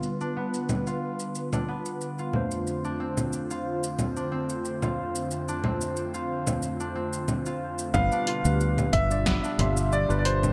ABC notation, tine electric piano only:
X:1
M:4/4
L:1/16
Q:"Swing 16ths" 1/4=91
K:Gmix
V:1 name="Tine electric piano"
[G,DFB]12- [G,DFB]2 [F,,A,DFc]2- | [F,,A,DFc]16- | [F,,A,DFc]12- [F,,A,DFc]2 z2 | [G,DFB]3 [G,DFB]4 [G,DFd]3 [G,DFe]3 [G,DFB]3 |]